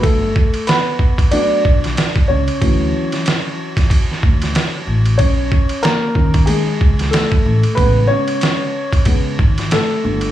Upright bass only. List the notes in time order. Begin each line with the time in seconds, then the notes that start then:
Already playing: G1
1.65 B1
2.30 C#2
2.62 D2
4.24 D2
4.87 A1
5.20 B1
6.81 C#2
7.46 A1
7.78 A1
9.39 G#1
10.04 G1